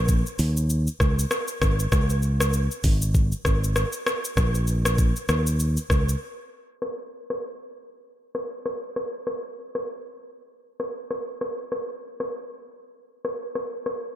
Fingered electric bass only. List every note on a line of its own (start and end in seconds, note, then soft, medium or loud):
0.00 0.22 A#1 loud
0.39 0.87 D#2 loud
1.00 1.24 C#2 medium
1.62 1.86 G#1 medium
1.92 2.67 C#2 loud
2.84 3.32 G#1 loud
3.45 3.83 G#1 medium
4.37 5.12 A#1 loud
5.29 5.77 D#2 loud
5.90 6.14 C#2 medium